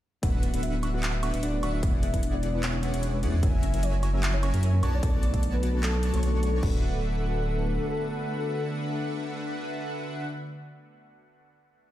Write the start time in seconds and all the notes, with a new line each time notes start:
0.22 D1 D3 A3 B3 D4 F#4 B4 E5 F#5, kick, closed hi-hat
0.34 D4
0.43 B3, closed hi-hat
0.53 D1 D3 A3 B3 D4 F#4 B4 E5 F#5, closed hi-hat
0.63 D4 E5, closed hi-hat
0.74 B3
0.83 F#4, closed hi-hat, high woodblock
0.93 A3 B3 D4 F#4 B4 F#5
1.03 F#4, clap, closed hi-hat
1.14 D4 E5
1.22 A3 B3 D4 F#4 B4, closed hi-hat, high woodblock
1.34 D1 D3 D4 F#4 B4 E5 F#5, closed hi-hat
1.43 D4 D5, closed hi-hat
1.53 A3 B3 D4 F#4 B4
1.63 D1 D3 D4 F#4 B4 E5 F#5, closed hi-hat, high woodblock
1.74 D4 E5
1.82 E1 E3 G#3 B3 D4 E4 G#4 B4 D5 F#5, kick, closed hi-hat
1.94 D4
2.03 B3 E5, closed hi-hat
2.13 E1 E3 G#3 B3 D4 E4 G#4 B4 D5 F#5, kick, closed hi-hat
2.23 D4, closed hi-hat
2.34 B3 D5
2.43 E4, closed hi-hat
2.53 G#3 B3 D4 E4 B4
2.63 E4 C#5, clap, closed hi-hat
2.74 D4
2.82 G#3 B3 D4 E4 B4, closed hi-hat
2.94 E1 E3 E4 G#4 D5 F#5, closed hi-hat
3.03 D4, closed hi-hat
3.13 G#3 B3 D4 E4 B4
3.23 E2 E3 E4 G#4 D5 F#5, closed hi-hat
3.34 D4
3.42 F#1 C#3 F#3 A#3 C#4 E4 F#4 A#4 E5 G#5, kick, closed hi-hat
3.54 E4
3.63 C#4, closed hi-hat
3.73 F#1 F#3 A#3 C#4 E4 F#4 A#4 E5 G#5, closed hi-hat
3.83 E4 C#5, closed hi-hat
3.94 C#4
4.03 F#4, closed hi-hat, high woodblock
4.13 F#3 A#3 C#4 E4 A#4 E5
4.23 F#4, clap, closed hi-hat
4.34 E4 C#5
4.42 F#3 A#3 C#4 E4 A#4, closed hi-hat, high woodblock
4.54 F#2 F#3 F#4 A#4 E5 G#5, closed hi-hat
4.63 E4 C#5, closed hi-hat
4.73 F#3 A#3 C#4 E4 A#4
4.83 B1 D3 A3 B3 F#4 C#5 D5 A5, closed hi-hat, high woodblock
4.94 D4 D5
5.02 B1 F#3 A3 B3 D4 F#4 A4 C#5 D5 A5, kick, closed hi-hat
5.14 D4
5.23 B3 D5, closed hi-hat
5.33 B1 F#3 A3 B3 D4 F#4 A4 C#5 D5 A5, kick, closed hi-hat
5.43 D4, closed hi-hat
5.54 B3 B4
5.63 F#4, closed hi-hat
5.73 F#3 A3 B3 D4 A4
5.83 F#4 A4, clap, closed hi-hat
5.94 D4
6.03 B3, closed hi-hat
6.13 B1 F#3 A3 B3 D4 F#4 C#5 D5 C#6, closed hi-hat
6.23 D4, closed hi-hat
6.33 F#3 A3 B3 D4 A4
6.43 F#4, closed hi-hat
6.54 D4
6.60 D1 D3 A3 B3 D4 F#4 B4 E5 F#5, kick, crash
6.64 F#4 B4